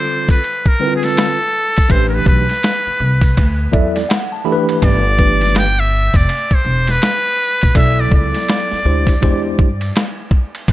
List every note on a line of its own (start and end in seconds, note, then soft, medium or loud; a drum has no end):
0.00 0.38 D3 medium
0.00 0.38 G3 medium
0.00 0.38 C4 medium
0.00 0.38 F4 medium
0.00 0.42 A4 medium
0.00 0.30 C5 loud
0.29 0.69 B4 medium
0.29 kick medium
0.29 ride medium
0.44 ride medium
0.66 0.95 A#4 medium
0.66 kick medium
0.80 1.35 D3 medium
0.80 1.35 G3 medium
0.80 1.35 C4 medium
0.80 0.89 E4 medium
0.80 1.36 B4 medium
0.87 1.39 F4 medium
0.96 1.06 G#4 medium
1.03 1.93 A4 loud
1.03 snare soft
1.03 ride medium
1.17 snare loud
1.17 hi-hat pedal soft
1.17 ride medium
1.76 kick medium
1.76 ride medium
1.89 2.20 A1 loud
1.89 2.44 E3 medium
1.89 2.45 A3 medium
1.89 2.45 D4 medium
1.89 2.45 G4 medium
1.89 2.45 B4 medium
1.89 2.08 C5 loud
1.89 kick loud
1.89 ride medium
2.09 2.16 A#4 medium
2.14 2.27 B4 medium
2.26 2.45 B1 medium
2.26 3.70 B4 medium
2.26 kick loud
2.49 snare soft
2.49 ride soft
2.63 snare loud
2.63 hi-hat pedal soft
2.63 ride medium
2.86 muted upright bass stroke soft
3.00 3.30 C2 medium
3.21 kick loud
3.21 ride medium
3.37 3.67 D2 medium
3.37 kick medium
3.37 ride medium
3.72 4.03 E2 medium
3.72 4.01 F#3 medium
3.72 4.01 B3 medium
3.72 4.01 E4 medium
3.72 4.01 A4 medium
3.72 3.94 D5 medium
3.72 3.94 E5 medium
3.72 kick loud
3.96 4.08 D5 medium
3.96 snare soft
3.96 ride medium
4.09 4.31 F#5 medium
4.09 snare loud
4.09 hi-hat pedal medium
4.09 ride medium
4.32 4.45 A5 medium
4.45 5.00 E3 medium
4.45 5.01 A3 medium
4.45 5.01 D4 medium
4.45 5.01 G4 medium
4.45 4.54 A4 medium
4.45 4.79 B5 medium
4.52 5.04 B4 loud
4.69 ride medium
4.82 6.11 G1 loud
4.82 5.60 D5 loud
4.82 kick loud
4.82 ride medium
5.18 5.65 E3 medium
5.18 5.65 A3 medium
5.18 5.65 D4 medium
5.18 5.65 G4 medium
5.18 5.65 B4 medium
5.18 kick medium
5.41 snare soft
5.41 ride medium
5.55 5.81 G5 loud
5.55 snare loud
5.55 hi-hat pedal medium
5.55 ride medium
5.80 6.18 E5 loud
6.14 6.26 F1 medium
6.14 6.56 D5 medium
6.14 kick medium
6.14 ride medium
6.29 ride medium
6.51 6.92 C5 medium
6.51 muted upright bass stroke soft
6.51 kick medium
6.65 6.95 E1 medium
6.87 7.76 B4 loud
6.87 snare soft
6.87 ride medium
7.02 snare loud
7.02 hi-hat pedal soft
7.02 ride medium
7.61 7.74 A#1 medium
7.61 kick loud
7.61 ride medium
7.74 8.06 B1 loud
7.74 8.79 F#3 medium
7.74 8.79 B3 medium
7.74 8.80 E4 medium
7.74 8.80 A4 medium
7.74 8.80 D5 medium
7.74 8.02 E5 loud
7.74 kick loud
7.74 ride medium
8.00 8.13 D5 medium
8.11 8.31 C#2 medium
8.11 9.55 D5 medium
8.11 kick medium
8.34 snare soft
8.34 ride medium
8.48 snare loud
8.48 hi-hat pedal soft
8.48 ride medium
8.72 muted upright bass stroke soft
8.72 snare soft
8.85 9.15 D2 loud
8.85 9.13 G#3 medium
8.85 9.13 D4 medium
8.85 9.14 E4 medium
8.85 9.14 G4 medium
8.85 9.14 C5 medium
9.07 kick loud
9.07 ride medium
9.21 9.53 E2 medium
9.21 9.67 G#3 medium
9.21 9.67 D4 medium
9.21 9.67 E4 medium
9.21 9.68 G4 medium
9.21 9.68 C5 medium
9.21 kick medium
9.21 ride medium
9.59 9.89 G2 medium
9.59 kick loud
9.81 ride medium
9.96 snare loud
9.96 hi-hat pedal soft
9.96 ride medium
10.31 kick loud
10.55 ride medium
10.68 10.72 A1 loud
10.68 kick loud
10.68 ride medium